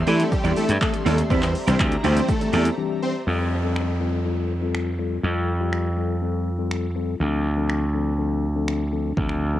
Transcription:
Already playing: G4 D5 E5 C6
0.07 E3 G3 A3 C4 D4 E4 G4 A4 D5, open hi-hat, shaker
0.19 C4 E4 G4 D5, closed hi-hat, shaker
0.31 G3 G4, muted clean electric guitar stroke, kick, shaker
0.44 E2 E3 G3 C4 D4 E4 G4 A4 D5, closed hi-hat, shaker
0.56 A3 C4 E4 G4 A4 D5, open hi-hat, shaker
0.68 G2, muted clean electric guitar stroke, closed hi-hat, shaker
0.81 E3 G3 A3 C4 D4 G4 A4, kick, clap, shaker
0.93 muted clean electric guitar stroke, closed hi-hat, shaker
1.05 D#2 A3 C4 E4 G4 A4 D5, open hi-hat, shaker
1.18 muted clean electric guitar stroke, closed hi-hat, shaker
1.30 E2 E3 G3 C4 D4 E4 G4 C5 D5 A#5, kick, shaker
1.42 muted clean electric guitar stroke, clap, closed hi-hat, shaker
1.54 muted clean electric guitar stroke, open hi-hat, shaker
1.67 C2 E3 G3 C4 D4 E4 G4 C5 D5, closed hi-hat, shaker
1.79 D2, muted clean electric guitar stroke, kick, clap, shaker
1.91 muted clean electric guitar stroke, closed hi-hat, shaker
2.03 D2 E3 G3 C4 D4 E4 G4 C5 D5, open hi-hat, shaker
2.16 C4 E4 G4 D5, closed hi-hat, shaker
2.29 A3 A4, kick, shaker
2.41 E3 G3 C4 D4 G4, muted clean electric guitar stroke, closed hi-hat, shaker
2.53 E2 A3 C4 E4 G4 A4 D5, open hi-hat, shaker
2.65 muted clean electric guitar stroke, closed hi-hat, shaker
2.78 E3 G3 C4 D4 G4
3.03 C4 C5
3.27 F2 G3 C4 F4 A4, downlifter
3.64 G3 C4 F4 A4
3.76 finger snap
4.00 G3 C4 F4 A4
4.25 G3 C4 F4 A4
4.62 G3 C4 F4 A4
4.75 finger snap
4.99 G3 C4 F4 A4
5.23 F2 G3 C4 F4 A4
5.60 G3 C4 F4 G4
5.73 finger snap
5.97 G3 C4 F4 A4
6.22 G3 C4 F4 A4
6.59 G3 C4 F4 A4
6.71 finger snap
6.95 G3 C4 F4 A4
7.20 D2 F3 C4 D4 A4
7.57 F3 C4 D4 A4
7.70 finger snap
7.94 F3 C4 D4 A4
8.18 F3 C4 D4 A4
8.55 F3 C4 D4 A4
8.68 finger snap
8.92 F3 C4 D4 A4
9.17 D2 F3 C4 D4 A4, kick
9.29 finger snap
9.54 F3 C4 D4 A4

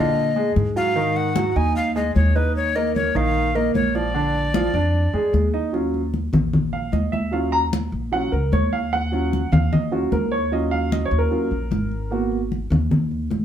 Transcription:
Already playing: A#2 D3 F4 D#5
0.17 high conga
0.36 G#3 G#4, high conga
0.56 G#2, high conga
0.76 F#3 F#4 F5
0.96 D#3 D#4, high conga
1.16 F#5, high conga
1.36 F#3 F#4, high conga
1.52 D#4 F#5, high conga
1.56 D#2 D#5 G#5
1.76 F5, high conga
1.96 G#3 G#4 D#5, high conga
2.16 D#2 C#5, high conga
2.35 D#4 B4 D#5, high conga
2.56 C#5, high conga
2.75 A#3 A#4 D#5, high conga
2.96 C#5, high conga
3.15 A#1 D#3 D#4 F5, high conga
3.36 high conga
3.55 A#3 A#4 D#5, high conga
3.74 A#1 C#5, high conga
3.95 F3 F4 D5
4.14 D3 D4, high conga
4.34 high conga
4.54 F3 F4, high conga
4.74 F2 D4 D5, high conga
4.95 high conga
5.13 F2 G#3 G#4, high conga
5.33 D#2, high conga
5.53 D#4 D#5, high conga
5.73 F#3 C#4 F4, high conga
5.94 high conga
6.14 high conga
6.33 A#1, high conga, low conga
6.53 high conga, low conga
6.73 F5, high conga
6.92 D#2 D#5, high conga
7.12 E5, high conga
7.31 F#3 C#4 F4 F5, high conga
7.52 A#5, high conga
7.73 high conga
7.92 A#1, high conga
8.12 F#3 C#4 F4 F#5, high conga
8.32 C#2 A#4, high conga
8.52 D#2 C#5, high conga
8.73 F5, high conga
8.93 F#5, high conga
9.12 F#3 C#4 F4, high conga
9.33 high conga
9.52 D#2 F5, high conga, low conga
9.73 D#5, high conga, low conga
9.91 F#3 C#4 F4 F#4, high conga
10.12 D#2 A#4, high conga
10.32 C#5
10.52 F#3 C#4 F4 D#5, high conga
10.71 F5, high conga
10.92 D#5, high conga
11.05 C#5
11.11 D#2, high conga
11.19 A#4
11.31 F#3 C#4 F4, high conga
11.51 A#1, high conga
11.71 G#1, high conga
11.92 high conga
12.11 A#3 B3 F#4, high conga
12.32 high conga
12.52 high conga
12.70 D#2, high conga, low conga
12.91 high conga, low conga
13.11 high conga
13.30 A1, high conga

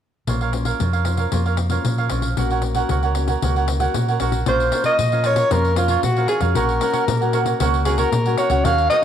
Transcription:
0.27 A#1 A#3 C#4 F4 A#4 C5 C#5 F5, pandeiro
0.41 A#4 C#5 F5, pandeiro
0.53 C#4 F4 C5, muted cavaquinho stroke, pandeiro
0.65 A#4 C#5 F5, pandeiro
0.80 F2 F3 F4 A#4 C#5 F5, pandeiro
0.93 A#4 C#5 F5, pandeiro
1.05 C#4 F4 C5, pandeiro
1.17 A#4 C#5 F5, pandeiro
1.32 F2 A#3 C#4 F4 A#4 C5 C#5 F5, pandeiro
1.46 A#4 C#5 F5, pandeiro
1.57 muted cavaquinho stroke, pandeiro
1.70 C#4 F4 A#4 C5 C#5 F5, pandeiro
1.85 A#2 F3, pandeiro
1.98 A#4 C#5 F5, pandeiro
2.09 A#1 C#4 F4 A#4 C5 C#5 F5, pandeiro
2.22 pandeiro
2.37 A#1 A#3 C#4 F#4 A#4 C#5 F#5, pandeiro
2.50 A#4 C#5 F#5, pandeiro
2.62 muted cavaquinho stroke, pandeiro
2.75 C#4 F#4 A#4 C#5 F#5, pandeiro
2.89 C#2 A#3 F#4 A#4 C#5 F#5, pandeiro
3.03 A#4 C#5 F#5, pandeiro
3.15 C#4 F#4 A#4, pandeiro
3.28 A#4 C#5 F#5, pandeiro
3.42 C#2 A#3 C#4 F#4 A#4 C#5 F#5, pandeiro
3.56 A#4 C#5 F#5, pandeiro
3.68 muted cavaquinho stroke, pandeiro
3.80 C#4 F#4 A#4 C#5 F#5, pandeiro
3.94 A#2 A#3, pandeiro
4.08 A#4 C#5 F#5, pandeiro
4.20 A#1 C#4 F#4 A#4 C#5 F#5, pandeiro
4.32 pandeiro
4.46 A#1 A#3 C#4 F4 A#4 C5 C#5 F5, pandeiro
4.60 pandeiro
4.72 C#4 F4 A#4 C5 C#5 F5, pandeiro
4.84 F4 A#4 C#5 D#5 F5, pandeiro
4.99 A#2 F3, pandeiro
5.12 C#4 F4 A#4 C5 C#5 F5, pandeiro
5.24 F4 A#4 C#5 F5, pandeiro
5.36 A#4 C#5 F5, pandeiro
5.51 F2 A#3 C#4 F4 A#4 C5 C#5 F5, pandeiro
5.65 pandeiro
5.76 C#4 F4 A#4 C5 C#5 F5, pandeiro
5.88 F4 A#4 C#5 F5, pandeiro
6.03 A#2 F3 F#4, pandeiro
6.16 C#4 F4 A#4 C5 C#5 F5, pandeiro
6.28 F4 G#4 A#4 C#5 F5, pandeiro
6.40 F2 C#4 F#4 A#4 C#5 F5, pandeiro
6.55 A#1 A#3 F#4 A#4 C#5 F#5, pandeiro
6.69 pandeiro
6.81 C#4 F#4 A#4 C#5 F#5, pandeiro
6.93 F#4 A#4 C#5 F#5, pandeiro
7.08 A#2 A#3, pandeiro
7.21 C#4 F#4 A#4 C#5 F#5, pandeiro
7.33 F#4 A#4 C#5 F#5, pandeiro
7.46 A#4 C#5 F#5, pandeiro
7.60 C#2 A#3 C#4 F#4 A#4 C#5 F#5, pandeiro
7.74 pandeiro
7.85 C#4 F#4 G#4 A#4 C#5 F#5, pandeiro
7.98 F#4 A#4 C#5 F#5, pandeiro
8.12 A#2 A#3, pandeiro
8.26 C#4 F#4 A#4 C#5 F#5, pandeiro
8.37 F#4 A#4 C#5 F#5, pandeiro
8.50 C#2 C#4 F#4 A#4 C#5 F#5, pandeiro
8.64 D#2 D#3 D#4 A#4 C#5 F5 F#5, pandeiro
8.78 pandeiro
8.90 D#4 F#4 A#4 C#5 D#5 F#5, pandeiro

